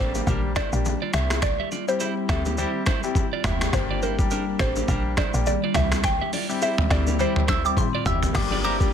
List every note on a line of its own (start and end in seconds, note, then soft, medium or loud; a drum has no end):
0.00 0.22 A1 medium
0.00 0.25 G3 medium
0.00 1.11 G3 medium
0.00 0.25 A#3 medium
0.00 1.12 A#3 medium
0.00 0.12 C4 medium
0.00 0.25 D4 medium
0.00 1.12 D4 medium
0.00 0.25 G4 medium
0.00 0.11 A4 medium
0.00 0.58 C5 loud
0.14 0.25 A#3 medium
0.14 0.25 G4 medium
0.14 low bongo medium
0.14 shaker medium
0.26 0.64 A#1 loud
0.26 0.49 G3 medium
0.26 0.49 A#3 medium
0.26 0.49 D4 medium
0.26 0.41 D4 medium
0.26 0.50 G4 loud
0.26 0.40 A#4 medium
0.26 kick loud
0.26 low conga medium
0.26 shaker medium
0.56 0.70 E4 medium
0.56 0.69 C5 medium
0.56 1.15 D5 loud
0.56 finger snap medium
0.56 kick medium
0.56 cross-stick medium
0.56 low bongo medium
0.56 shaker soft
0.72 0.96 A#1 medium
0.72 0.92 G3 medium
0.72 0.93 A#3 medium
0.72 0.93 D4 medium
0.72 0.93 G4 medium
0.72 shaker medium
0.85 high bongo medium
0.85 low conga medium
0.85 shaker medium
1.02 1.12 F4 medium
1.02 1.11 D5 medium
1.13 1.60 C2 loud
1.13 1.36 G3 medium
1.13 8.31 G3 medium
1.13 3.71 C4 medium
1.13 1.36 C4 medium
1.13 3.71 E4 medium
1.13 1.36 E4 medium
1.13 1.36 G4 medium
1.13 1.27 G4 medium
1.13 1.43 E5 loud
1.13 1.27 E5 medium
1.13 finger snap medium
1.13 cross-stick medium
1.13 shaker medium
1.30 finger snap medium
1.30 cross-stick medium
1.30 high bongo medium
1.30 shaker medium
1.42 1.90 D5 loud
1.42 finger snap medium
1.42 kick loud
1.42 cross-stick loud
1.42 low conga medium
1.42 shaker medium
1.60 1.69 G4 medium
1.60 1.69 E5 medium
1.71 1.85 F4 medium
1.71 1.85 D5 medium
1.71 low bongo medium
1.71 shaker medium
1.88 2.26 G3 medium
1.88 2.26 C4 medium
1.88 2.26 E4 medium
1.88 2.26 G4 medium
1.88 2.26 C5 medium
1.88 shaker medium
2.00 2.14 E4 medium
2.00 2.13 C5 medium
2.00 high bongo medium
2.00 shaker medium
2.29 2.66 D2 medium
2.29 2.56 G3 medium
2.29 2.56 C4 medium
2.29 2.43 C4 medium
2.29 2.56 E4 medium
2.29 2.56 G4 medium
2.29 2.42 A4 medium
2.29 3.41 E5 loud
2.29 finger snap medium
2.29 kick medium
2.29 cross-stick medium
2.29 shaker medium
2.45 2.56 A#3 medium
2.45 2.55 G4 medium
2.45 low bongo medium
2.45 shaker medium
2.57 2.80 G3 medium
2.57 2.80 C4 medium
2.57 2.80 E4 medium
2.57 2.72 E4 medium
2.57 2.81 G4 loud
2.57 2.71 C5 medium
2.57 low conga medium
2.57 shaker medium
2.86 3.00 E4 medium
2.86 3.00 C5 medium
2.86 finger snap medium
2.86 kick medium
2.86 cross-stick medium
2.86 low bongo medium
2.86 shaker soft
3.03 3.23 G3 medium
3.03 3.23 C4 medium
3.03 3.24 E4 medium
3.03 3.24 G4 medium
3.03 shaker medium
3.15 kick medium
3.15 high bongo medium
3.15 low conga medium
3.15 shaker medium
3.33 3.42 F4 medium
3.33 3.42 D5 medium
3.44 3.67 F1 medium
3.44 3.67 G3 medium
3.44 3.67 C4 medium
3.44 3.67 E4 medium
3.44 3.67 G4 medium
3.44 3.58 G4 medium
3.44 3.58 E5 medium
3.44 finger snap medium
3.44 cross-stick medium
3.44 mid tom loud
3.44 shaker medium
3.61 finger snap medium
3.61 cross-stick medium
3.61 high bongo medium
3.61 shaker medium
3.73 4.56 G1 loud
3.73 4.15 G3 medium
3.73 4.15 A#3 medium
3.73 5.73 A#3 medium
3.73 5.73 D4 medium
3.73 4.15 D4 medium
3.73 4.15 G4 loud
3.73 4.00 C5 loud
3.73 finger snap medium
3.73 kick loud
3.73 cross-stick loud
3.73 low conga medium
3.73 shaker medium
3.91 4.00 F4 medium
3.91 4.00 D5 medium
4.02 4.16 E4 medium
4.02 4.56 A#4 medium
4.02 4.15 C5 medium
4.02 low bongo medium
4.02 shaker medium
4.18 4.57 G3 medium
4.18 4.57 A#3 medium
4.18 4.57 D4 medium
4.18 4.57 G4 medium
4.18 kick medium
4.18 shaker medium
4.31 4.45 D4 medium
4.31 4.44 A#4 medium
4.31 high bongo medium
4.31 shaker medium
4.59 4.83 A1 medium
4.59 4.86 G3 medium
4.59 4.86 A#3 medium
4.59 4.74 C4 medium
4.59 4.87 D4 medium
4.59 4.87 G4 medium
4.59 4.73 A4 medium
4.59 5.20 C5 medium
4.59 finger snap medium
4.59 kick medium
4.59 cross-stick medium
4.59 shaker medium
4.76 4.87 A#3 medium
4.76 4.86 G4 medium
4.76 low bongo medium
4.76 shaker medium
4.88 5.25 A#1 loud
4.88 5.11 G3 medium
4.88 5.11 A#3 medium
4.88 5.11 D4 medium
4.88 5.02 D4 medium
4.88 5.11 G4 loud
4.88 5.02 A#4 medium
4.88 kick loud
4.88 low conga medium
4.88 shaker medium
5.17 5.31 E4 medium
5.17 5.31 C5 medium
5.17 5.46 D5 medium
5.17 finger snap medium
5.17 kick medium
5.17 cross-stick medium
5.17 low bongo medium
5.17 shaker soft
5.33 5.57 A#1 medium
5.33 5.54 G3 medium
5.33 5.54 A#3 medium
5.33 5.54 D4 medium
5.33 5.54 G4 medium
5.33 shaker medium
5.46 5.76 D5 loud
5.46 high bongo medium
5.46 low conga medium
5.46 shaker medium
5.64 5.73 F4 medium
5.64 5.73 D5 medium
5.74 6.21 C2 loud
5.74 5.97 G3 medium
5.74 5.97 C4 medium
5.74 8.32 C4 medium
5.74 8.32 E4 medium
5.74 5.97 E4 medium
5.74 5.98 G4 medium
5.74 5.89 G4 medium
5.74 5.88 E5 medium
5.74 6.05 E5 loud
5.74 finger snap medium
5.74 cross-stick medium
5.74 mid tom medium
5.74 shaker medium
5.92 finger snap medium
5.92 cross-stick medium
5.92 high bongo medium
5.92 shaker medium
6.04 6.64 G5 loud
6.04 finger snap medium
6.04 kick loud
6.04 cross-stick loud
6.04 low conga medium
6.04 shaker medium
6.21 6.31 G4 medium
6.21 6.31 E5 medium
6.33 6.47 F4 medium
6.33 6.46 D5 medium
6.33 open hi-hat medium
6.33 low bongo medium
6.33 shaker medium
6.49 6.87 G3 medium
6.49 6.87 C4 medium
6.49 6.88 E4 medium
6.49 6.88 G4 medium
6.49 shaker medium
6.62 6.75 E4 medium
6.62 6.75 C5 medium
6.62 6.92 E5 loud
6.62 high bongo medium
6.62 shaker medium
6.78 mid tom medium
6.90 7.27 D2 medium
6.90 7.17 G3 medium
6.90 7.17 C4 medium
6.90 7.04 C4 medium
6.90 7.17 E4 medium
6.90 7.18 G4 medium
6.90 7.04 A4 medium
6.90 7.21 D5 medium
6.90 finger snap medium
6.90 kick medium
6.90 cross-stick medium
6.90 shaker medium
7.07 7.17 A#3 medium
7.07 7.17 G4 medium
7.07 low bongo medium
7.07 shaker medium
7.19 7.41 G3 medium
7.19 7.42 C4 medium
7.19 7.42 E4 medium
7.19 7.33 E4 medium
7.19 7.42 G4 loud
7.19 7.33 C5 medium
7.19 8.02 C5 medium
7.19 low conga medium
7.19 shaker medium
7.36 mid tom medium
7.48 7.62 E4 medium
7.48 7.61 C5 medium
7.48 7.66 E6 loud
7.48 finger snap medium
7.48 kick medium
7.48 cross-stick medium
7.48 low bongo medium
7.48 shaker soft
7.64 7.85 G3 medium
7.64 7.85 C4 medium
7.64 7.85 E4 medium
7.64 7.85 G4 medium
7.64 7.78 D6 loud
7.64 shaker medium
7.77 8.07 C6 loud
7.77 kick medium
7.77 high tom medium
7.77 high bongo medium
7.77 low conga medium
7.77 shaker medium
7.95 8.04 F4 medium
7.95 8.04 D5 medium
8.05 8.29 F1 medium
8.05 8.28 G3 medium
8.05 8.28 C4 medium
8.05 8.28 E4 medium
8.05 8.28 G4 medium
8.05 8.20 G4 medium
8.05 8.19 E5 medium
8.05 8.36 E6 loud
8.05 mid tom medium
8.05 shaker medium
8.23 floor tom medium
8.23 high bongo medium
8.23 shaker medium
8.34 8.93 G1 loud
8.34 8.76 G3 medium
8.34 8.93 G3 medium
8.34 8.76 A#3 medium
8.34 8.93 A#3 medium
8.34 8.76 D4 medium
8.34 8.93 D4 medium
8.34 8.76 G4 loud
8.34 8.63 D6 loud
8.34 finger snap medium
8.34 kick loud
8.34 cross-stick loud
8.34 crash loud
8.34 low conga medium
8.34 shaker medium
8.51 8.62 F4 medium
8.51 8.61 D5 medium
8.51 low bongo medium
8.64 8.77 D4 medium
8.64 8.77 E4 medium
8.64 8.77 G4 medium
8.64 8.77 A#4 loud
8.64 8.77 C5 medium
8.64 8.93 D6 loud
8.64 low bongo medium
8.64 shaker medium
8.80 8.93 G3 medium
8.80 8.93 A#3 medium
8.80 8.93 D4 medium
8.80 8.93 G4 medium
8.80 kick medium
8.80 shaker medium